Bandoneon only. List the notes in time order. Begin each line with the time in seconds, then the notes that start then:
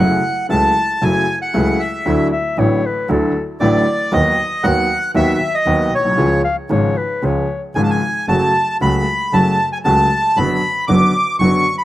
0.00 F#5
0.50 A5
1.02 G#5
1.42 F#5
1.80 E5
3.60 D5
4.13 D#5
4.63 F#5
5.16 E5
5.55 D#5
5.95 C#5
7.75 G#5
7.84 A5
7.90 G#5
8.28 A5
8.82 B5
9.33 A5
9.72 G#5
9.84 A5
10.37 B5
10.88 D6
11.39 C#6
11.78 B5